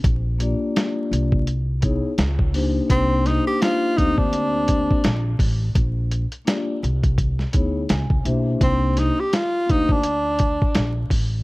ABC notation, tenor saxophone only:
X:1
M:4/4
L:1/16
Q:"Swing 16ths" 1/4=84
K:Cm
V:1 name="Tenor saxophone"
z16 | C2 E G F2 E D6- D z2 | z16 | C2 E G F2 E D6- D z2 |]